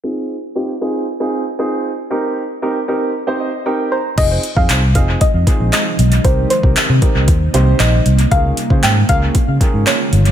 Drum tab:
CC |----------------|----------------|x---------------|----------------|
HH |----------------|----------------|x-x-x-x-x-x-x-xx|x-x-x-x-x-x-x-xx|
CP |----------------|----------------|----x-------x---|----x-------x---|
BD |----------------|----------------|o--o--o-o-o-----|o--o--o-o-------|

CC |----------------|
HH |x-x-x-x-x-x-x-xx|
CP |----x-------x---|
BD |o--o--o-o-o-----|